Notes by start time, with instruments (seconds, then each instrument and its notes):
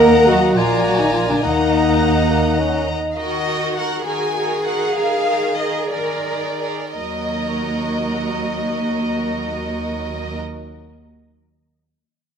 Already playing: double bass section D#2, cello section A#3, bassoon A#3, viola section A#4, french horn section A#4, violin section D#5 F#5 A#5, clarinet D#5, oboe F#5, flute A#5
0.26 cello section F#3, french horn section F#4, viola section F#4
0.56 double bass section A#1, cello section F3, bassoon A#3, viola section F4, french horn section F4, violin section D5 G#5 A#5, clarinet D5, oboe G#5, flute A#5
0.85 cello section F#3, viola section F#4, french horn section F#4
0.98 cello section D#3, french horn section D#4, viola section D#4
1.11 cello section F3, french horn section F4, viola section F4
1.29 cello section D3, french horn section D4, viola section D4
1.40 double bass section D#2, cello section D#3, bassoon A#3, french horn section D#4, viola section D#4, violin section D#5 F#5 A#5, oboe F#5, flute A#5
1.45 clarinet D#5
2.30 bassoon A#3
2.59 bassoon C#4
2.89 bassoon D#4
3.11 violin section F5
3.17 viola section D#3, violin section F#4 A#4 D#5, cello section F#4
3.46 violin section F#4 A#4
3.76 violin section F#4 A#4 F#5
4.05 viola section D#3, violin section F#4 A#4 G#5, cello section G#4
4.35 violin section F#4 A#4
4.65 violin section F#4 A#4 F#5
4.95 viola section D#3, violin section G#4 A#4 F5
5.26 violin section G#4 A#4
5.59 violin section G#4 A#4 D#5
5.91 viola section D#3, violin section G#4 A#4 D5, cello section A#4
6.26 violin section G#4 A#4
6.60 violin section G#4 A#4
6.96 cello section D#2, viola section F#3 F#4, violin section A#4 D#5